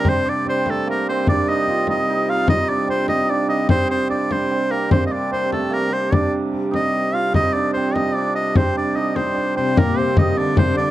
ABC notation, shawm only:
X:1
M:6/8
L:1/16
Q:3/8=99
K:Cm
V:1 name="Shawm"
c2 d2 c2 =A2 B2 c2 | d2 e4 e4 f2 | e2 d2 c2 e2 d2 e2 | c2 c2 d2 c4 B2 |
c3/2 e/2 d2 c2 =A2 B2 c2 | d2 z4 e4 f2 | e2 d2 c2 e2 d2 e2 | c2 d2 e2 c4 c2 |
B2 c2 e2 d2 c2 d2 |]